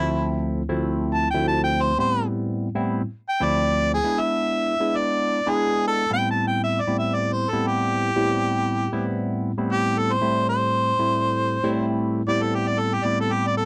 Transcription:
Already playing: tine electric piano D2 F3 A3 C4 E4, harmonica E4
0.69 tine electric piano D2 F3 A3 C4 E4
1.14 harmonica A5
1.31 tine electric piano D2 F3 A3 C4 E4, harmonica G5
1.48 harmonica A5
1.64 harmonica G5
1.82 harmonica C5
1.98 tine electric piano A2 G3 B3 C4 E4, harmonica C5
2.75 tine electric piano A2 G3 B3 C4 E4
3.29 harmonica G5
3.40 tine electric piano D2 F3 A3 C4 E4, harmonica D5
3.94 harmonica G#4
4.04 tine electric piano G#3 B3 D4 E4
4.21 harmonica E5
4.80 tine electric piano G#3 B3 D4 E4
4.97 harmonica D5
5.46 tine electric piano G#3 B3 D4 E4, harmonica G#4
5.88 harmonica A4
6.10 tine electric piano A2 G3 B3 C4 E4, harmonica G5
6.31 harmonica A5
6.47 harmonica G5
6.64 harmonica E5
6.81 harmonica D5
6.87 tine electric piano A2 G3 B3 C4 E4
6.99 harmonica E5
7.15 harmonica D5
7.33 harmonica C5
7.50 tine electric piano A2 G3 B3 C4 E4, harmonica A4
7.67 harmonica G4
8.16 tine electric piano A2 G3 B3 C4 E4
8.92 tine electric piano A2 G3 B3 C4 E4
9.58 tine electric piano A2 G3 B3 C4 E4
9.72 harmonica G4
9.99 harmonica A4
10.12 harmonica C5
10.21 tine electric piano A2 G3 A3 C4 E4
10.49 harmonica C5
10.99 tine electric piano A2 G3 A3 C4 E4
11.64 tine electric piano A2 G3 A3 C4 E4
12.27 tine electric piano A2 G3 B3 C4 E4, harmonica D5
12.42 harmonica A4
12.55 harmonica G4
12.69 harmonica D5
12.80 harmonica A4
12.94 harmonica G4
13.05 tine electric piano A2 G3 B3 C4 E4, harmonica D5
13.21 harmonica A4
13.33 harmonica G4
13.47 harmonica D5
13.57 harmonica A4

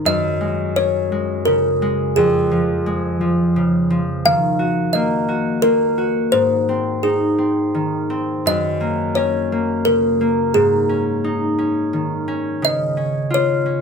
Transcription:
Already playing: harp C4 D#4
0.05 harp F#2, kalimba D#5
0.41 harp G#3
0.76 harp C#4, kalimba C#5
1.12 harp G#3
1.45 harp C#3, kalimba A#4
1.82 harp G#3
2.16 harp F2, kalimba G#4
2.51 harp F3
2.86 harp G#3
3.21 harp F3
3.56 harp C#3
3.90 harp F3
4.25 harp D#3, kalimba F5
4.59 harp F#4
4.93 harp A#3, kalimba D#5
5.28 harp F#4
5.62 harp A#3, kalimba A#4
5.98 harp F#4
6.32 harp G#2, kalimba C5
6.69 harp C4
7.03 harp D#4, kalimba G#4
7.38 harp C4
7.75 harp D#3
8.10 harp C4
8.46 harp F#2, kalimba D#5
8.81 harp A#3
9.15 harp C#4, kalimba C#5
9.52 harp A#3
9.85 harp C#3, kalimba A#4
10.21 harp A#3
10.54 harp G#2, kalimba G#4
10.89 harp C#4
11.24 harp D#4
11.59 harp C#4
11.93 harp D#3
12.28 harp C#4
12.62 harp C#3, kalimba D#5
12.97 harp C#4
13.30 harp F4, kalimba C#5
13.66 harp C#4

